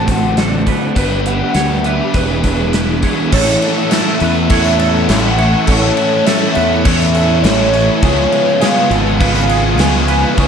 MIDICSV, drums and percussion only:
0, 0, Header, 1, 2, 480
1, 0, Start_track
1, 0, Tempo, 588813
1, 788, Time_signature, 4, 2, 24, 8
1, 8542, End_track
2, 0, Start_track
2, 0, Title_t, "Drums"
2, 63, Note_on_c, 9, 42, 65
2, 64, Note_on_c, 9, 36, 88
2, 145, Note_off_c, 9, 42, 0
2, 146, Note_off_c, 9, 36, 0
2, 303, Note_on_c, 9, 42, 83
2, 311, Note_on_c, 9, 38, 111
2, 384, Note_off_c, 9, 42, 0
2, 392, Note_off_c, 9, 38, 0
2, 543, Note_on_c, 9, 42, 61
2, 545, Note_on_c, 9, 36, 68
2, 625, Note_off_c, 9, 42, 0
2, 626, Note_off_c, 9, 36, 0
2, 783, Note_on_c, 9, 42, 85
2, 785, Note_on_c, 9, 36, 102
2, 865, Note_off_c, 9, 42, 0
2, 866, Note_off_c, 9, 36, 0
2, 1025, Note_on_c, 9, 42, 68
2, 1107, Note_off_c, 9, 42, 0
2, 1259, Note_on_c, 9, 42, 96
2, 1267, Note_on_c, 9, 38, 101
2, 1341, Note_off_c, 9, 42, 0
2, 1349, Note_off_c, 9, 38, 0
2, 1503, Note_on_c, 9, 42, 58
2, 1584, Note_off_c, 9, 42, 0
2, 1744, Note_on_c, 9, 42, 79
2, 1748, Note_on_c, 9, 36, 100
2, 1825, Note_off_c, 9, 42, 0
2, 1829, Note_off_c, 9, 36, 0
2, 1986, Note_on_c, 9, 42, 60
2, 1989, Note_on_c, 9, 36, 72
2, 2068, Note_off_c, 9, 42, 0
2, 2071, Note_off_c, 9, 36, 0
2, 2227, Note_on_c, 9, 42, 93
2, 2235, Note_on_c, 9, 38, 104
2, 2308, Note_off_c, 9, 42, 0
2, 2316, Note_off_c, 9, 38, 0
2, 2466, Note_on_c, 9, 42, 57
2, 2470, Note_on_c, 9, 36, 78
2, 2548, Note_off_c, 9, 42, 0
2, 2551, Note_off_c, 9, 36, 0
2, 2709, Note_on_c, 9, 49, 122
2, 2709, Note_on_c, 9, 57, 79
2, 2712, Note_on_c, 9, 36, 98
2, 2791, Note_off_c, 9, 49, 0
2, 2791, Note_off_c, 9, 57, 0
2, 2793, Note_off_c, 9, 36, 0
2, 2952, Note_on_c, 9, 57, 68
2, 2964, Note_on_c, 9, 54, 30
2, 3034, Note_off_c, 9, 57, 0
2, 3045, Note_off_c, 9, 54, 0
2, 3080, Note_on_c, 9, 54, 33
2, 3161, Note_off_c, 9, 54, 0
2, 3186, Note_on_c, 9, 57, 88
2, 3194, Note_on_c, 9, 38, 127
2, 3195, Note_on_c, 9, 54, 106
2, 3268, Note_off_c, 9, 57, 0
2, 3276, Note_off_c, 9, 38, 0
2, 3277, Note_off_c, 9, 54, 0
2, 3426, Note_on_c, 9, 57, 61
2, 3428, Note_on_c, 9, 54, 71
2, 3507, Note_off_c, 9, 57, 0
2, 3510, Note_off_c, 9, 54, 0
2, 3549, Note_on_c, 9, 54, 29
2, 3631, Note_off_c, 9, 54, 0
2, 3666, Note_on_c, 9, 57, 97
2, 3671, Note_on_c, 9, 36, 125
2, 3747, Note_off_c, 9, 57, 0
2, 3753, Note_off_c, 9, 36, 0
2, 3784, Note_on_c, 9, 54, 91
2, 3866, Note_off_c, 9, 54, 0
2, 3906, Note_on_c, 9, 54, 79
2, 3909, Note_on_c, 9, 57, 69
2, 3988, Note_off_c, 9, 54, 0
2, 3990, Note_off_c, 9, 57, 0
2, 4042, Note_on_c, 9, 54, 32
2, 4124, Note_off_c, 9, 54, 0
2, 4148, Note_on_c, 9, 57, 90
2, 4156, Note_on_c, 9, 38, 127
2, 4157, Note_on_c, 9, 54, 83
2, 4230, Note_off_c, 9, 57, 0
2, 4238, Note_off_c, 9, 38, 0
2, 4238, Note_off_c, 9, 54, 0
2, 4389, Note_on_c, 9, 57, 70
2, 4471, Note_off_c, 9, 57, 0
2, 4624, Note_on_c, 9, 57, 91
2, 4630, Note_on_c, 9, 36, 107
2, 4706, Note_off_c, 9, 57, 0
2, 4712, Note_off_c, 9, 36, 0
2, 4866, Note_on_c, 9, 57, 70
2, 4871, Note_on_c, 9, 54, 29
2, 4948, Note_off_c, 9, 57, 0
2, 4953, Note_off_c, 9, 54, 0
2, 4996, Note_on_c, 9, 54, 32
2, 5077, Note_off_c, 9, 54, 0
2, 5107, Note_on_c, 9, 57, 96
2, 5113, Note_on_c, 9, 54, 92
2, 5115, Note_on_c, 9, 38, 120
2, 5188, Note_off_c, 9, 57, 0
2, 5195, Note_off_c, 9, 54, 0
2, 5197, Note_off_c, 9, 38, 0
2, 5341, Note_on_c, 9, 57, 69
2, 5354, Note_on_c, 9, 54, 69
2, 5423, Note_off_c, 9, 57, 0
2, 5435, Note_off_c, 9, 54, 0
2, 5479, Note_on_c, 9, 54, 31
2, 5561, Note_off_c, 9, 54, 0
2, 5584, Note_on_c, 9, 57, 102
2, 5588, Note_on_c, 9, 36, 123
2, 5666, Note_off_c, 9, 57, 0
2, 5670, Note_off_c, 9, 36, 0
2, 5722, Note_on_c, 9, 54, 82
2, 5803, Note_off_c, 9, 54, 0
2, 5825, Note_on_c, 9, 57, 65
2, 5831, Note_on_c, 9, 54, 73
2, 5907, Note_off_c, 9, 57, 0
2, 5912, Note_off_c, 9, 54, 0
2, 5950, Note_on_c, 9, 54, 31
2, 6032, Note_off_c, 9, 54, 0
2, 6063, Note_on_c, 9, 54, 92
2, 6068, Note_on_c, 9, 57, 90
2, 6076, Note_on_c, 9, 38, 124
2, 6144, Note_off_c, 9, 54, 0
2, 6149, Note_off_c, 9, 57, 0
2, 6157, Note_off_c, 9, 38, 0
2, 6306, Note_on_c, 9, 57, 63
2, 6310, Note_on_c, 9, 54, 75
2, 6387, Note_off_c, 9, 57, 0
2, 6391, Note_off_c, 9, 54, 0
2, 6542, Note_on_c, 9, 57, 80
2, 6545, Note_on_c, 9, 36, 110
2, 6624, Note_off_c, 9, 57, 0
2, 6626, Note_off_c, 9, 36, 0
2, 6785, Note_on_c, 9, 57, 65
2, 6867, Note_off_c, 9, 57, 0
2, 6913, Note_on_c, 9, 54, 33
2, 6995, Note_off_c, 9, 54, 0
2, 7021, Note_on_c, 9, 54, 92
2, 7023, Note_on_c, 9, 57, 95
2, 7031, Note_on_c, 9, 38, 121
2, 7103, Note_off_c, 9, 54, 0
2, 7104, Note_off_c, 9, 57, 0
2, 7112, Note_off_c, 9, 38, 0
2, 7263, Note_on_c, 9, 54, 73
2, 7265, Note_on_c, 9, 57, 57
2, 7345, Note_off_c, 9, 54, 0
2, 7346, Note_off_c, 9, 57, 0
2, 7388, Note_on_c, 9, 54, 31
2, 7470, Note_off_c, 9, 54, 0
2, 7505, Note_on_c, 9, 36, 113
2, 7507, Note_on_c, 9, 57, 85
2, 7586, Note_off_c, 9, 36, 0
2, 7588, Note_off_c, 9, 57, 0
2, 7622, Note_on_c, 9, 54, 96
2, 7703, Note_off_c, 9, 54, 0
2, 7740, Note_on_c, 9, 57, 69
2, 7742, Note_on_c, 9, 54, 73
2, 7821, Note_off_c, 9, 57, 0
2, 7823, Note_off_c, 9, 54, 0
2, 7861, Note_on_c, 9, 54, 30
2, 7942, Note_off_c, 9, 54, 0
2, 7970, Note_on_c, 9, 54, 81
2, 7981, Note_on_c, 9, 57, 100
2, 7989, Note_on_c, 9, 38, 127
2, 8052, Note_off_c, 9, 54, 0
2, 8063, Note_off_c, 9, 57, 0
2, 8071, Note_off_c, 9, 38, 0
2, 8103, Note_on_c, 9, 54, 29
2, 8185, Note_off_c, 9, 54, 0
2, 8214, Note_on_c, 9, 54, 75
2, 8220, Note_on_c, 9, 57, 68
2, 8296, Note_off_c, 9, 54, 0
2, 8301, Note_off_c, 9, 57, 0
2, 8450, Note_on_c, 9, 54, 33
2, 8459, Note_on_c, 9, 57, 75
2, 8460, Note_on_c, 9, 36, 107
2, 8531, Note_off_c, 9, 54, 0
2, 8541, Note_off_c, 9, 57, 0
2, 8542, Note_off_c, 9, 36, 0
2, 8542, End_track
0, 0, End_of_file